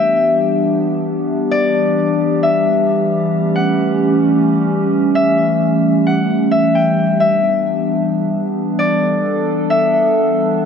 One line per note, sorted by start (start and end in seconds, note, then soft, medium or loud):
0.00 10.57 E3 medium
0.00 10.57 G3 medium
0.00 3.30 B3 medium
0.00 3.30 D4 medium
0.00 8.75 G4 loud
0.00 1.65 E5 medium
0.00 1.03 G5 medium
1.51 3.36 D5 loud
2.43 4.15 E5 medium
3.34 6.94 A3 medium
3.34 6.94 C#4 medium
3.56 5.16 F#5 medium
5.15 6.51 E5 loud
6.07 6.81 F#5 medium
6.51 7.20 E5 medium
6.75 8.30 G5 medium
6.97 10.65 B3 medium
6.97 10.65 D4 medium
7.20 8.92 E5 medium
8.79 10.59 A4 medium
8.79 10.63 D5 medium
9.70 10.65 E5 medium
10.60 10.65 F#3 medium
10.60 10.65 A3 medium
10.60 10.65 A4 medium